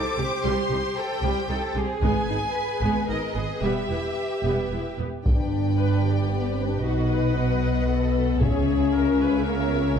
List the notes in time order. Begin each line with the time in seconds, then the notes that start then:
Already playing: G4 A4 C5 D6
0.18 C2 G3 C4 G4
0.44 C2 G3 C6
0.70 C2 G3 D#4
0.97 A4 G5
1.21 C2 G3 G4
1.49 C2 G3 D#4 A4
1.75 C2 G3 C4 G#4
2.01 G#1 G#3 B3 G#4 B4 G#5, taiko
2.27 G#1 B3 D#4
2.54 B4
2.81 G#1 G#3 B3, taiko
3.08 G#1 B3 D#4 A#4 D#5
3.34 G#1 B3 G#4
3.61 E1 G3 B3 G4 E5
3.90 E1 B3 E4
4.44 E1 G3 B3
4.70 E1 B3 E4
4.99 E1 B3
5.24 G1 G2 D4 B4 D5 G5, taiko
5.79 B4
6.05 G4
6.31 B3
6.50 C4
6.67 D4
6.82 B1 B2 D#4 F#4 D#5
6.86 F#5
7.11 B4
7.36 B3
7.90 A4
8.39 C#2 C#3 G#4 C#5 E5, taiko
8.43 C#4
8.95 A#4
9.21 B4
9.46 A#3 A#4
9.67 B3
9.82 C#4